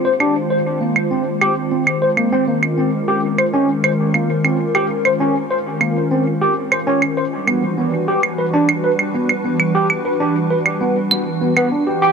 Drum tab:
CL |-x----x--x--x-x-|-x----x--x-x-x-x|-x----x-----x-x-|-x----x--x-x-x-x|

CL |-x----x--x--x---|